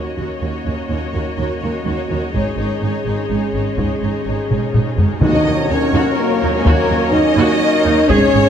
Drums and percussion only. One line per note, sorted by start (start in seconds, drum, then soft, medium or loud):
0.18 taiko soft
2.34 taiko soft
3.79 taiko medium
4.51 taiko low-mid medium
4.74 taiko low-mid medium
4.98 taiko low medium
5.22 taiko loud
5.22 tam-tam medium
6.66 taiko medium
8.10 taiko loud